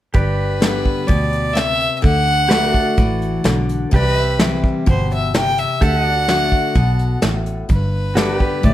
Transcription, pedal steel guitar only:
0.14 G4 B4 D5
2.49 G4 B4 D5
2.69 F#4
2.75 A4
3.94 G4 D5
4.21 E5
5.81 G4 A4 E5
6.01 F#4
6.08 D5
8.15 F#4 A4 D5
8.35 G4
8.42 B4

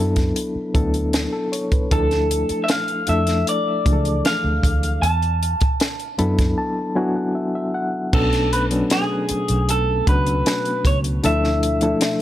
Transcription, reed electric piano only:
Already playing: F#3 B3 D4 E4 A4
0.74 F#3 B3 D4 E4 A4
1.33 A4
1.52 C#5
1.72 B4
1.91 F3 A3 D4 E4 A4
3.08 F3 A3 D4 E4 A4
3.85 E3 F3 A3 D4 G#4
3.93 A4
6.18 F#3 B3 D4 E4 A4 B5
6.58 A5
6.95 F#3 B3 D4 E4 F#4 G#5
7.16 F#5
7.35 E5
7.55 E5
7.74 F#5
8.13 F#3 B3 C#4 D4 A4
8.71 F#3 B3 C#4 D4 B4
10.07 F#3 B3 C#4 D4 F#4
11.23 F3 A3 D4 E4 A4
11.82 F3 A3 D4 E4 A4

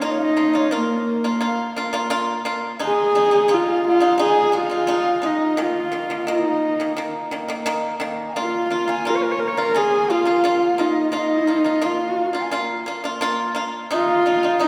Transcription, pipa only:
0.01 A#3 F4
0.37 A#3 F4
0.53 A#3 F4
0.71 A#3 F4
1.24 A#3 F4
1.41 A#3 F4
1.76 A#3 F4
1.93 A#3 F4
2.10 A#3 F4
2.45 A#3 F4
2.79 G#3 D#4
3.15 G#3 D#4
3.31 G#3 D#4
3.48 G#3 D#4
4.00 G#3 D#4
4.18 G#3 D#4
4.52 G#3 D#4
4.70 G#3 D#4
4.87 G#3 D#4
5.22 G#3 D#4
5.57 D#3 A#3
5.92 D#3 A#3
6.10 D#3 A#3
6.27 D#3 A#3
6.80 D#3 A#3
6.97 D#3 A#3
7.31 D#3 A#3
7.48 D#3 A#3
7.66 D#3 A#3
8.00 D#3 A#3
8.36 A#3 F4
8.70 A#3 F4
8.88 A#3 F4
9.05 A#3 F4
9.57 A#3 F4
9.74 A#3 F4
10.10 A#3 F4
10.25 A#3 F4
10.44 A#3 F4
10.78 A#3 F4
11.12 A#3 F4
11.47 A#3 F4
11.64 A#3 F4
11.82 A#3 F4
12.33 A#3 F4
12.51 A#3 F4
12.86 A#3 F4
13.04 A#3 F4
13.21 A#3 F4
13.55 A#3 F4
13.91 G#3 D#4
14.26 G#3 D#4
14.43 G#3 D#4
14.60 G#3 D#4

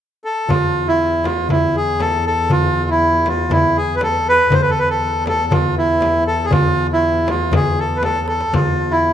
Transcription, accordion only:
0.24 A4
0.49 F4
0.88 E4
1.25 F4
1.51 E4
1.76 G#4
2.01 A4
2.26 A4
2.52 F4
2.91 E4
3.27 F4
3.52 E4
3.77 G#4
3.96 B4
4.03 A4
4.29 B4
4.53 C5
4.62 B4
4.70 A4
4.79 B4
4.90 A4
5.29 A4
5.52 F4
5.78 E4
6.27 A4
6.45 G#4
6.52 F4
6.93 E4
7.29 F4
7.55 G#4
7.79 A4
7.96 B4
8.04 A4
8.28 A4
8.54 F4
8.91 E4

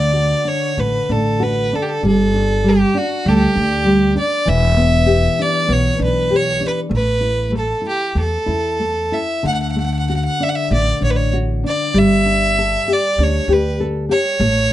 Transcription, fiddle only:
Already playing: D5
0.48 C#5
0.80 B4
1.11 A4
1.42 B4
1.75 A4
1.83 G4
1.88 A4
2.06 A4
2.68 G4
2.98 F#4
3.28 G4 A4
3.37 G4
4.18 D5
4.49 E5
5.42 D5
5.73 C#5
6.04 B4
6.36 C#5
6.67 B4
6.95 B4
7.57 A4
7.88 G4
8.19 A4
9.13 E5
9.47 F#5
9.54 F#5
9.62 F#5
9.71 F#5
9.80 F#5
9.86 F#5
9.94 F#5
9.99 F#5
10.09 F#5
10.16 F#5
10.25 F#5
10.43 E5
10.49 F#5
10.55 E5
10.73 D5
11.04 C#5
11.10 B4
11.16 C#5
11.67 D5
11.98 E5
12.92 D5
13.23 C#5
13.52 B4
14.11 C#5

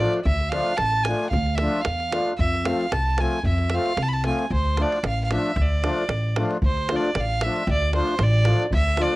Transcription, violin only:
Already playing: D5
0.25 E5
0.49 F5
0.78 A5
1.04 G#5
1.30 F5
1.55 E5
1.81 F5
2.38 E5
2.65 F5
2.92 A5
3.20 G#5
3.47 E5
3.75 F5
4.02 A5
4.08 B5
4.14 A5
4.27 G#5
4.53 C5
4.82 D5
5.08 F5
5.24 F5
5.34 E5
5.62 D5
6.66 C5
6.96 D5
7.20 F5
7.44 E5
7.72 D5
7.96 C5
8.23 D5
8.74 E5
9.02 D5

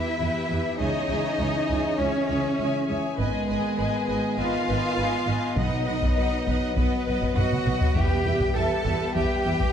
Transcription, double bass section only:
0.20 E2
0.50 E2
0.80 C#2
1.09 C#2
1.40 C#2
1.70 C#2
1.99 C#2
2.30 C#2
2.60 C#2
2.89 C#2
3.19 G#1
3.49 G#1
3.79 G#1
4.09 G#1
4.39 G#1
4.69 G#1
4.98 G#1
5.27 G#1
5.58 B1
5.87 B1
6.17 B1
6.47 B1
6.76 B1
7.07 B1
7.36 B1
7.66 B1
7.95 E2
8.25 E2
8.55 E2
8.85 E2
9.15 E2
9.45 E2

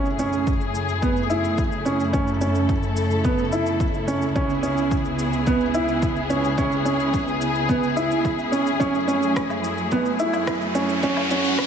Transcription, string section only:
Already playing: F#2 C#3 A3 E4 G#4
2.13 A4
4.35 C#2 B3 G#4
8.80 F#2 F#3 A3
11.03 F#4

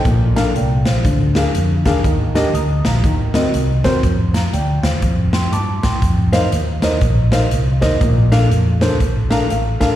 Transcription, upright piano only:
0.05 A#2
0.36 D4 A4 A#4 F5
0.55 D5 G5
0.86 C5 F5
1.05 D3
1.36 D4 G#4 A#4 F5
1.85 D4 G#4 A#4 F5
2.05 D#3
2.35 D4 G4 A#4 D#5
2.54 A#5 D#6
2.86 F5 A#5
3.04 D#3
3.35 C4 F#4 A#4 D#5
3.84 C4 F#4 A#4 C5
4.34 F5 A#5
4.53 D5 G5
4.83 C5 F5
5.33 G5 C6
5.52 A5 D6
5.83 G5 C6
6.33 D#4 A#4 C5 F5
6.83 D#4 A#4 C5 D#5
7.32 D#4 A#4 C5 F5
7.81 D#4 A#4 C5 D#5
8.02 A#2
8.32 D4 A4 A#4 F5
8.81 D4 A4 A#4 C5
9.30 D4 A4 A#4 F5 A#5
9.50 F5
9.80 D4 A4 A#4 F5

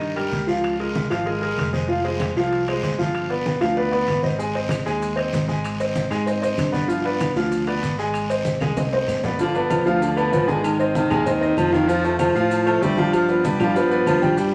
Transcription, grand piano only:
Already playing: D#3 D#4 D#5
0.16 G3 G4 A#4
0.47 F3 F4 F5
0.80 G#3 G#4 A#4
1.10 F3 F4 F5
1.26 G#3 G#4 A#4
1.41 G#3 G#4 A#4
1.73 G#3 G#4 C5
1.88 F3 F4 F5
2.04 G#3 G#4 C5
2.37 F3 F4 F5
2.68 G#3 G#4 C5
2.99 F3 F4 F5
3.30 B3 B4 D5
3.61 F3 F4 F5
3.77 B3 B4 D5
3.91 B3 B4 D5
4.23 C4 C5 D#5
4.38 G#3 G#4 G#5
4.55 C4 C5 D#5
4.86 G#3 G#4 G#5
5.16 C4 C5 D#5
5.48 G#3 G#4 G#5
5.80 C4 C5 D#5
6.10 G#3 G#4 G#5
6.26 C4 C5 D#5
6.42 C4 C5 D#5
6.72 B3 B4 D5
6.88 F3 F4 F5
7.05 B3 B4 D5
7.36 F3 F4 F5
7.67 B3 B4 D5
7.98 G#3 G#4 G#5
8.30 C4 C5 D#5
8.62 G#3 G#4 G#5
8.77 C4 C5 D#5
8.93 C4 C5 D#5
9.25 B3 B4 D5
9.40 F3 F4 F5
9.56 B3 B4 D5
9.86 F3 F4 F5
10.17 B3 B4 D5
10.32 B3 B4 D5
10.47 G#3 G#4 G#5
10.79 C4 C5 D#5
11.10 G#3 G#4 G#5
11.26 C4 C5 D#5
11.41 C4 C5 D#5
11.72 F3 F4 F5
11.88 F3 F4 F5
12.04 A3 A4 C5
12.35 F3 F4 F5
12.66 A3 A4 C5
12.82 A3 A4 C5
12.98 F3 F4 F5
13.29 B3 B4 D5
13.60 F3 F4 F5
13.76 B3 B4 D5
13.91 B3 B4 D5
14.22 G3 G4 G5
14.37 G3 G4 G5

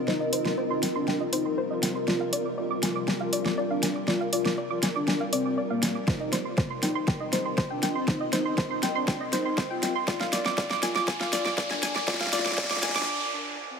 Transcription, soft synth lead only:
0.08 D#4
0.33 D#4
0.70 D#4
0.95 D4
1.33 D#4
1.71 F4
2.08 F4
2.83 F4
3.21 F4
3.71 D4
4.08 F4
4.33 F4
4.71 F4
4.96 D4
5.33 C4
5.70 A#3
6.08 D#4
6.83 D#4
7.21 D#4
7.71 D4
8.08 D#4
8.33 D#4
8.71 D#4
8.95 D4
9.33 D#4
9.71 F4
10.08 F4
10.83 F4
11.21 F4
11.70 D4
12.08 F4
12.33 F4
12.71 F4
12.95 D4
13.33 D4
13.70 C4

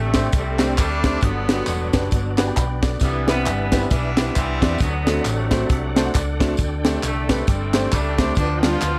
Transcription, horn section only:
Already playing: C3 A3
0.33 G3 A3 C4
0.77 G3 A3 D4
1.22 D3 F#3 B3
1.49 D3 F#3 B3
3.02 E3 G3 B3
3.28 E3 G3 B3
3.90 G3 B3 D4
4.35 E3 G3 C4
4.80 F#3 B3
5.25 C3 F#3 A3
7.03 C3 A3
7.48 G3 A3 C4
7.92 G3 A3 D4
8.36 F3 B3 D4
8.62 B3 F4

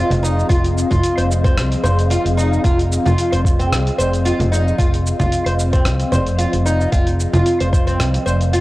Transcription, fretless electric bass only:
0.10 F1
0.50 F1
0.91 F1
1.18 F1
1.57 C2
1.84 F1
2.25 F1
2.64 F1
3.06 F1
3.33 F1
3.72 C2
3.98 F1
4.39 F1
4.78 F1
5.20 F1
5.46 F1
5.85 C2
6.12 F1
6.53 F1
6.92 F1
7.33 F1
7.61 F1
7.99 C2
8.26 F1

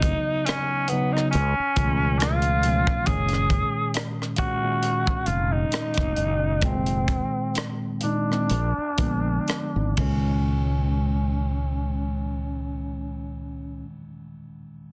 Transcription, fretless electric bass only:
Already playing: G#1
1.35 C#2
1.59 muted fretless electric bass stroke
1.77 C#2
3.07 F#1
5.08 muted fretless electric bass stroke
5.28 F1
5.98 F1
6.18 F#1
6.63 F1
8.51 A#1
8.78 muted fretless electric bass stroke
8.99 A#1
9.76 G#1
9.98 C#2

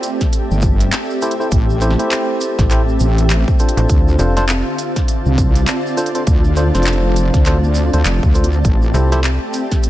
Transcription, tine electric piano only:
1.22 E4 G4 A4 C5
1.40 E4 G4 A4 C5
1.81 E4 G4 A4 C5
1.99 E4 G4 A4 C5
2.71 E4 G4 A4 C5
3.60 D4 F4 A4 C5
4.19 D4 F4 A4 C5
4.37 D4 F4 A4 C5
5.97 D4 F4 A4 C5
6.15 D4 F4 A4 C5
6.57 D4 F4 A4 C5
6.74 D4 F4 A4 C5
7.46 D4 F4 A4 C5
7.93 D4 F4 A4 C5
8.35 D4 F4 A4 C5
8.94 E4 G4 A4 C5
9.12 E4 G4 A4 C5

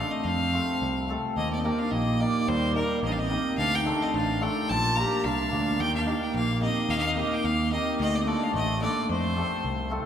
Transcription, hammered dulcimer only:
Already playing: A3 D4
0.00 F4 A4
0.52 A3 C4 F4 A4
1.08 A3 C4 F4 A4
1.64 A#3 D#4 G4 A#4
2.19 A#3 D#4 G4 A#4
2.75 A#3 D#4 G4 A#4
3.29 A#3 D#4 G4 A#4
3.84 A3 D4 F4 A4
4.40 A3 D4 F4 A4
4.96 A#3 D4 F4 A#4
5.51 A#3 D4 F4 A#4
6.05 A#3 D#4 G4 A#4
6.60 A#3 D#4 G4 A#4
7.15 A#3 D#4 G4 A#4
7.71 A#3 D#4 G4 A#4
8.26 A3 D4 F4 A4
8.80 A3 D4 F4 A4
9.36 A3 C4 F4 A4
9.90 A3 C4 F4 A4

